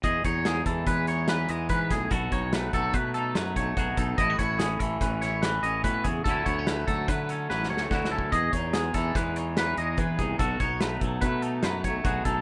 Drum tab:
HH |x--x--x--x--x--x--x--x--x--x--|x--x--x--x--x--x--x--x--x--x--|x--x--x--x--x--x--x--x--x--x--|x--x--x--x--x--x--------------|
SD |------o-----------o--------o--|------o-----------o-----------|------o-----o--o--o-----------|------o-----------o-o-o-o-o---|
BD |o--o-----o--o-----------o--o--|o--o-----o--o--------o--o--o--|o--o-----o--o-----------o--o--|o--o-----o--o-----------o---o-|

HH |x--x--x--x--x--x--x--x--x--x--|x--x--x--x--x--x--x--x--x--x--|
SD |------o-----o-----o-----------|------o-----------o-----------|
BD |o--o-----o--o-----------o--o--|o--o-----o--o--------o--o--o--|